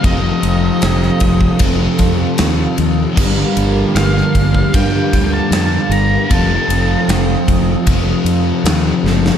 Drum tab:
CC |----------------|x---------------|----------------|
RD |x-x-x-x-x-x-x-x-|--x-x-x-x-x-x-x-|x-x-x-x-x-x-x---|
SD |----oo------o---|----oo------o---|----o-------o-oo|
BD |o-----ooo-o-----|o-----ooo-o-----|o-----o-o-------|